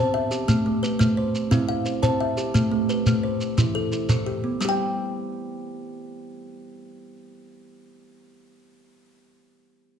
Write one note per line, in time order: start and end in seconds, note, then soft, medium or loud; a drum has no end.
0.00 0.31 C4 medium
0.00 0.30 C5 medium
0.00 0.31 C5 medium
0.00 0.13 F5 medium
0.00 0.48 A5 medium
0.14 0.65 E5 medium
0.31 0.65 G4 medium
0.31 shekere medium
0.48 0.82 A3 medium
0.48 shekere medium
0.66 1.00 A3 medium
0.83 1.34 B4 medium
0.83 shekere medium
0.99 1.34 A3 medium
0.99 shekere medium
1.17 1.51 C5 medium
1.35 shekere medium
1.51 1.85 C4 medium
1.51 1.68 E4 medium
1.51 1.86 F5 medium
1.51 shekere medium
1.69 2.20 F5 medium
1.86 2.37 C5 medium
1.86 shekere medium
2.03 2.37 C4 medium
2.03 2.37 C5 medium
2.03 2.54 A5 medium
2.03 shekere medium
2.20 2.72 E5 medium
2.37 2.72 G4 medium
2.37 shekere medium
2.54 2.89 A3 medium
2.54 shekere medium
2.71 3.06 A3 medium
2.89 3.41 B4 medium
2.89 shekere medium
3.06 3.41 A3 medium
3.06 shekere medium
3.23 3.58 C5 medium
3.41 shekere medium
3.58 3.92 E3 medium
3.58 3.75 E4 medium
3.58 shekere medium
3.75 4.27 A4 medium
3.92 4.44 E4 medium
3.92 shekere medium
4.09 4.44 E3 medium
4.09 4.44 E4 medium
4.09 4.61 C5 medium
4.09 shekere medium
4.26 4.64 G4 medium
4.44 4.78 B3 medium
4.61 8.03 G3 medium
4.61 8.04 G3 medium
4.61 shekere medium
4.65 8.08 G4 medium
4.65 8.12 G5 medium
4.69 8.12 G5 medium